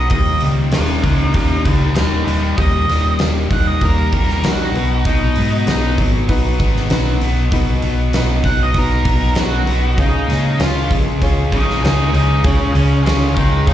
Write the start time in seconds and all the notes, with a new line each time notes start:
Already playing: F#3 B3 D#4
0.10 D#1 D#2 G4 A#4 D#5, kick, open hi-hat
0.14 D#4
0.40 C#2 A#2 G3, open hi-hat
0.72 D#1 G3 A#3 D#4 G4 A#4 F#5, snare, open hi-hat
1.04 C#2 D#3 A#4 F#5, kick, open hi-hat
1.34 D#1 G3 A#3 D#4 G4 A#4 F#5, kick, open hi-hat
1.65 C#2 G3 A#3 G4 D#5, kick, open hi-hat
1.95 D#1 D#3 D#4 G4 A#4 D#5, snare, open hi-hat
2.25 D#1 G3 G4 D#5, open hi-hat
2.58 D#1 D#2 D#4 G4 A#4 D#5, kick, open hi-hat
2.88 D#1 A#2 G3, snare, open hi-hat
3.19 D#1 G3 A#3 D#4 G4 A#4, snare, open hi-hat
3.50 D#1 D#3 F#5, kick, open hi-hat
3.67 D#5
3.81 D#1 G3 A#3 D#4 G4 A#4, kick, open hi-hat
4.12 D#1 G3 A#3, kick, open hi-hat
4.29 snare
4.43 A#1 D#3 G3 D#4 F#4 A#4, snare, open hi-hat
4.74 B1 B2 D#4 F#4 B4, open hi-hat
5.05 B1 B2 D#4, kick, open hi-hat
5.36 G#2 F#3 B3, open hi-hat
5.66 B1 B3 D#4 F#4 B4, snare, open hi-hat
5.98 G#1 F#3, kick, open hi-hat
6.28 B1 B3 D#4 F#4 B4, kick, open hi-hat
6.59 G#1 B3 D#4, kick, open hi-hat
6.76 snare
6.90 B1 F#3 D#4 F#4 B4, snare, open hi-hat
7.21 B1 B3, open hi-hat
7.52 B1 B2 D#4 F#4 B4, kick, open hi-hat
7.82 B1 F#3 B3, open hi-hat
8.13 B1 B3 D#4 F#4 B4, snare, open hi-hat
8.44 B1 F#3 F#5, kick, open hi-hat
8.63 D#5
8.74 B1 B3 D#4 F#4, kick, open hi-hat
8.78 A#4
9.05 B1 B3 D#4, kick, open hi-hat
9.35 B1 F#3 D#4 F#4 B4, snare, open hi-hat
9.67 B1 B3, open hi-hat
9.98 C#2 C#3 D#4 F4 G#4 C#5, kick, open hi-hat
10.28 A#2 G#3 C#4, snare, open hi-hat
10.59 C#2 C#4 F4 G#4 C#5, snare, open hi-hat
10.91 A#1 G#3, kick, open hi-hat
11.22 C#2 C#4 F4 G#4 C#5, kick, open hi-hat
11.52 A#1 C#4 F4 A#4 G5, kick, open hi-hat
11.70 snare
11.83 C#2 G#3 F4 G#4 A#4 C#5 G5, snare, open hi-hat
12.14 C#2 C#4 A#4 G5, open hi-hat
12.44 C#2 C#3 F4 G#4 C#5 F5, kick, open hi-hat
12.73 C#2 G#3 C#4 G#4 F5, open hi-hat
13.04 C#2 C#4 F4 G#4 C#5 F5, snare, open hi-hat
13.35 C#2 G#3 A#4 D#5, kick, open hi-hat
13.67 C#2 C#4 F4 G#4 A#4 C#5 D#5, kick, open hi-hat